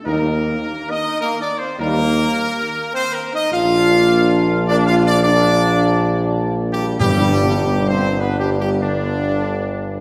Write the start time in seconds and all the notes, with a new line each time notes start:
0.04 D#2 G3 A#3 D#4 A#4
0.90 D#4 D#5
1.21 A#3 A#4
1.40 D4 D5
1.58 C4 C5
1.78 D#2 G3 A#3 D#4 A#4
2.93 C4 C5
3.13 A#3 A#4
3.33 D#4 D#5
3.52 A#1 A#3 D4 F4 F5
4.67 A#3 D4 D5
4.86 F4 F5
5.05 D4 D5
5.23 D4 D5
5.27 A#3
6.71 G3 G4
6.98 G1 G2 G3 B3 D4 G4
7.88 C4 C5
8.18 B3 D4 B4
8.39 G3 G4
8.60 G3 G4
8.80 D3 B3 D4